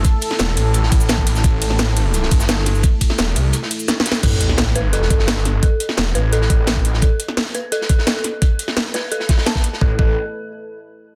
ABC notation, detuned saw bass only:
X:1
M:4/4
L:1/8
Q:1/4=172
K:C
V:1 name="Detuned saw bass" clef=bass
z2 E,,, A,,,2 A,,,3 | A,,,4- A,,, G,,,3 | z2 E,,, C,, z4 | A,,,4- A,,, G,,,3 |
z2 E,,, A,,,2 A,,,3 | z8 | z8 | A,,, A,,, z6 |]